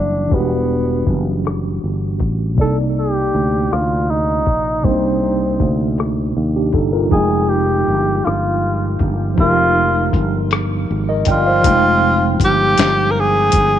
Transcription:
Already playing: F#1 E3 G3 D4 F#5
0.28 E3 D4, kick
0.32 E1 B3 F#4 G4, closed hi-hat
1.07 F#1, kick, closed hi-hat
1.45 cross-stick, closed hi-hat
1.84 G1
2.20 A1, kick, closed hi-hat
2.55 C2 C3 A#3, kick, closed hi-hat
2.59 D#4 A4 D5
2.99 G4
3.34 D2, closed hi-hat
3.71 D2 F4, cross-stick, closed hi-hat
4.10 D#4
4.46 A#1, kick, closed hi-hat
4.82 C2 C3 A#3 C4, kick, closed hi-hat
4.87 D4 D#4
5.60 D2, kick, closed hi-hat
5.98 cross-stick, closed hi-hat
6.37 D#2
6.56 D4 G4
6.73 G1 D#4 A4, kick, closed hi-hat
6.93 F4 A#4
7.09 F1 F3 D#4 G#4, kick, closed hi-hat
7.14 G#3 G5
7.49 G4
7.88 G1, closed hi-hat
8.25 G1 F4, cross-stick, closed hi-hat
8.99 G1, kick, closed hi-hat
9.35 F3 D#4, kick, closed hi-hat
9.39 F1 F4 G4 A#4
10.13 G1, kick, closed hi-hat
10.51 cross-stick, closed hi-hat
10.91 G#1
11.09 A#4 D#5
11.25 G1 D5 G5, kick, closed hi-hat
11.31 F4
11.46 C5 F5
11.62 F1 F3 D#4, kick, closed hi-hat
11.66 G#3 G5
12.40 G1, kick, closed hi-hat
12.44 G4
12.78 G1, snare, closed hi-hat
13.11 A#4
13.20 G#4
13.52 G1, kick, closed hi-hat

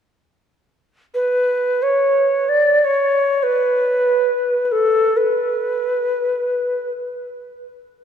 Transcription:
1.14 B4
1.82 C#5
2.49 D5
2.84 C#5
3.43 B4
4.65 B4
4.72 A4
5.17 B4

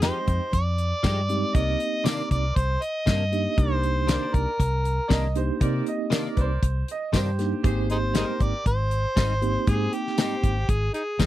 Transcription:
Already playing: G#3 C4 D#4 G5
0.02 F3 G#3 D#4 G4 C5, snare, closed hi-hat, tambourine
0.28 F2, kick, closed hi-hat
0.53 F2 D5, kick, closed hi-hat
0.78 closed hi-hat
1.03 G2 F3 G#3 D#4 G4, kick, snare, closed hi-hat, tambourine
1.29 G#3 C4 D#4 G4, closed hi-hat
1.53 C2 A#3 C4 D#4 G4 A#4 D5 D#5, kick, closed hi-hat
1.80 closed hi-hat
2.04 C3 D#3 A#3 D4 A#4 D5, snare, closed hi-hat, tambourine
2.31 C2 D5, kick, closed hi-hat
2.56 C2 C5, kick, closed hi-hat
2.82 D#5, closed hi-hat
3.06 G2 C3 D#3 A#3 D4, kick, snare, closed hi-hat, tambourine
3.32 A#3 D4 D#4 G4, closed hi-hat
3.57 C2 A#3 D4 D#4 G4 A#4 C5 D5, kick, closed hi-hat
3.83 closed hi-hat
4.07 C3 D#3 A#3 D4 A#4 C5 D5, snare, closed hi-hat, tambourine
4.34 C2 A#4, kick, closed hi-hat
4.60 C2, kick, closed hi-hat
4.85 closed hi-hat
5.08 C2 C3 D#3 A#3 D4 D5, kick, snare, closed hi-hat, tambourine
5.12 D#5
5.35 A#3 D4 D#4 G4 C5, closed hi-hat
5.60 C3 A#3 C4 D#4 G4 A#4 D5, kick, closed hi-hat
5.87 D#5, closed hi-hat
6.10 C3 D#3 A#3 D4 A#4 D5, snare, closed hi-hat, tambourine
6.36 C2 B4, kick, closed hi-hat
6.41 C5
6.63 C2, kick, closed hi-hat
6.88 D#5, closed hi-hat
7.13 G2 C3 D#3 A#3 D4 G4 C5, kick, snare, closed hi-hat, tambourine
7.39 A#3 D4 D#4 G4, snare, closed hi-hat
7.63 G#1 A#3 C4 D#4 G4 G#4 C5, kick, closed hi-hat
7.90 D#4 G#4 C5, closed hi-hat
8.14 G#2 G3 C4 D#4 G4 G#4 A#4 C5, snare, closed hi-hat, tambourine
8.40 G#1 D5, kick, closed hi-hat
8.66 G#1 C5, kick, closed hi-hat
8.91 closed hi-hat
9.16 G#1 G#2 G3 C4 D#4, kick, snare, closed hi-hat, tambourine
9.41 A#3 C4 D#4 G4, closed hi-hat
9.67 G#2 A#3 C4 D#4 G4 G#4 C5, kick, closed hi-hat
9.93 G4, closed hi-hat
10.07 snare
10.17 G#2 G3 C4 D#4 G4 C5, snare, closed hi-hat, tambourine
10.44 G#1, kick, closed hi-hat
10.69 G#1 G#4, kick, closed hi-hat
10.94 D#4 G#4, closed hi-hat
11.19 D#2 G#2 G3 C4 D#4, kick, snare, closed hi-hat, tambourine

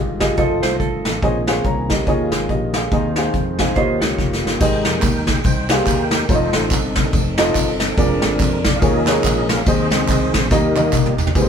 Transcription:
Already playing: G1 G#2 D#3 G#3 F4 G4
0.20 F4 G4 G#4 D#5, kick, snare, closed hi-hat
0.37 F1 A3 F4 A4 C5 D#5, kick, closed hi-hat
0.62 C2 C5, snare, closed hi-hat
0.80 G1 A4, kick, closed hi-hat
1.05 A1, snare, closed hi-hat
1.22 A#1 A#2 A#3 C4 C#4 G#4 C5 C#5 D#5, kick, closed hi-hat
1.47 G#4 C5 C#5 F5, snare, closed hi-hat
1.64 C2 C#5 A#5, kick, closed hi-hat
1.90 G4 D#5, kick, snare, closed hi-hat
2.05 D#2 D#3 F4 G#4 C#5 D#5, kick, closed hi-hat
2.32 G#1, snare, closed hi-hat
2.49 A#1 G4 D#5, kick, closed hi-hat
2.73 G#4 F5, snare, closed hi-hat
2.91 D#2 D#3 G#3 C4 D#4 G#4 C5 D#5, kick, closed hi-hat
3.16 D#4 G#4 C5 F5, snare, closed hi-hat
3.33 F2, kick, closed hi-hat
3.59 D#4 G#4 C5 F5, kick, snare, closed hi-hat
3.75 D#2 D#3 A#3 C#4 F4 G4 C5 C#5 D#5, kick, closed hi-hat
4.01 C#2 C#5, snare, closed hi-hat
4.18 F1, kick, snare
4.33 snare
4.45 G1, snare
4.60 G#1 G#2 D#4 G4 G#4 A#4 C5 D#5 G5, kick, crash, tambourine
4.85 F2 C3 G3 A#3, snare, ride, tambourine
5.02 D#2, kick, clap, ride, tambourine
5.27 G#4, kick, snare, ride, tambourine
5.44 C2 D#4 C5 G5, kick, ride, tambourine
5.70 C3 G3 A#3 D#4 G4 G#4 C5 F5, snare, clap, ride, tambourine
5.87 D#2 D#4 G4 A#4, kick, clap, ride, tambourine
6.11 snare, ride, tambourine
6.29 F1 D#4 F4 A4 C5 C#5, kick, ride, tambourine
6.35 D#5
6.53 A1, snare, ride, tambourine
6.70 G1 C4 D#4 A4, kick, clap, ride, tambourine
6.95 D#3 G3 A3, kick, snare, ride, tambourine
7.12 F1, kick, ride, tambourine
7.38 D#4 F4 A4 C5 D#5, snare, clap, ride, tambourine
7.55 G1 C4 D#4 A4, kick, clap, ride, tambourine
7.80 snare, ride, tambourine
7.97 F1 D3 G#3 C4 D4 F4 G#4 A#4 D5, kick, ride, tambourine
8.22 G#1, snare, ride, tambourine
8.39 F2, kick, clap, ride, tambourine
8.64 D5, kick, snare, ride, tambourine
8.76 F5
8.80 D#2 D#3 F3 G#3 C#4 D#4 F4 G#4 A#4 C#5 D#5, kick, ride, tambourine
9.07 D#4 F4 G#4 A#4 C#5, snare, clap, ride, tambourine
9.24 A#1, kick, clap, ride, tambourine
9.49 F5, snare, ride, tambourine
9.61 F5
9.66 D#2 D#3 G#3 C4 D#4 G#4 C5 D#5, kick, ride, tambourine
9.91 C#2, snare, ride, tambourine
10.08 C2, kick, clap, ride, tambourine
10.34 A#1 C5, kick, snare, ride, tambourine
10.50 D#2 D#3 G3 A#3 D#4 G4 A#4 D#5, kick, snare, tambourine
10.76 A#3 D#4 G4 A#4 D#5, clap, high tom, tambourine
10.93 G1, kick, clap, mid tom, tambourine
11.06 mid tom
11.18 floor tom, tambourine
11.27 floor tom
11.35 G#1 G#2 C3 G3 A#3 C4 D#4 G4 G#4 B4, kick, ride, tambourine
11.42 C5

